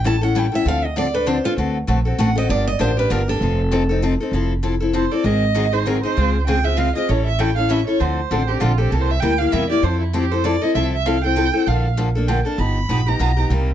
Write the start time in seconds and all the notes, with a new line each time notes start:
Already playing: A1
0.04 E3 G3 C#4 E4 A4 A5
0.21 C#4 E4 A4 F#5
0.35 E3 G3 C#4 E4 A4 G5
0.52 C#4 E4 A4 E5
0.65 D2 D3 F3 C4 D4 A4 F5
0.85 D#5
0.96 D3 F3 C4 D4 A4 D5
1.14 C4 D4 A4 B4
1.26 D3 F3 C4 D4 A4 C5
1.44 C4 D4 F4 A4
1.57 D2 D3 A3 C4 F#4 A4
1.87 A#1 D3 A3 C4 F#4 A4
2.05 C4 F#4 A4
2.18 A1 D3 A3 C4 F#4 A4 F#5
2.36 C4 F#4 A4 D#5
2.49 G1 D3 F3 A#3 D4 G4 D5
2.67 D#5
2.79 A1 D3 F3 A#3 D4 G4 C5
2.97 A#3 D4 G4 B4
3.10 G1 D3 F3 A#3 D4 G4 A#4
3.28 A#3 D4 G4 A4
3.40 F1 F3 C4 D#4 A4
3.71 F3 C4 D#4 A4
3.89 C4 D#4 A4
4.02 F3 C4 D#4 A4
4.20 C4 D#4 A4
4.31 F1 F3 C4 E4 A4
4.63 F3 C4 E4 A4
4.80 C4 E4 A4
4.93 F3 C4 E4 A4 C5
5.12 C4 E4 A4 D5
5.24 G#1 D#3 F#3 C4 D#4 G#4 D#5
5.55 D#3 F#3 C4 D#4 G#4
5.72 C4 D#4 G#4 C5
5.86 D#3 F#3 C4 D#4 G#4 A#4
6.03 C4 D#4 G#4 C5
6.17 C#2 C#3 G#3 C4 F4 G#4
6.47 C#3 G#3 C4 F4 G#4 G5
6.64 C4 F4 G#4 E5
6.77 C#3 G#3 C4 F4 G#4 F5
6.95 C4 F4 G#4 D#5
7.09 A1 E3 G3 C#4 E4 A4 C#5
7.26 E5
7.39 E3 G3 C#4 E4 A4 G5
7.56 C#4 E4 A4 F5
7.69 E3 G3 C#4 E4 A4 E5
7.87 C#4 E4 A4 C#5
8.00 D2 D3 F3 C4 D4 A4 C5
8.30 A1 D3 F3 C4 D4 A4
8.47 C4 D4 G4 A4
8.60 A#1 D3 F3 C4 D4 F4 A4
8.78 C4 D4 G4 A4
8.91 C2 C3 G3 A#3 E4 G4 A4
9.01 C5
9.11 E5
9.20 D2 C3 G3 A#3 E4 G4 G5
9.38 A#3 E4 G4 F5
9.52 E2 C3 G3 A#3 E4 G4 E5
9.70 A#3 E4 G4 D5
9.82 F2 F3 C4 E4 A4 C5
10.01 E4
10.13 F3 C4 E4 G4 A4
10.32 C4 E4 A4 C5
10.44 F3 C4 E4 A4 D5
10.61 C4 E4 A4 D#5
10.74 C2 F3 C4 E4 A4 E5
10.93 E5
11.06 F3 C4 E4 A4 F5
11.24 C4 E4 A4 G5
11.36 F3 C4 E4 A4
11.54 C4 E4 A4
11.66 A#1 D3 F3 A#3 D4 A4 F5
11.97 D3 F3 A#3 D4 A4
12.15 A#3 D4 A4
12.28 D3 F3 A#3 D4 A4 G5
12.45 A#3 D4 A4 A5
12.58 G1 F3 B3 D#4 G4 B5
12.89 A#1 F3 B3 D#4 G4
13.06 B3 D#4 G4 A#5
13.19 B1 F3 B3 D#4 G4
13.37 B3 D#4 G4
13.50 C2 C3 G3 A#3 D#4 G4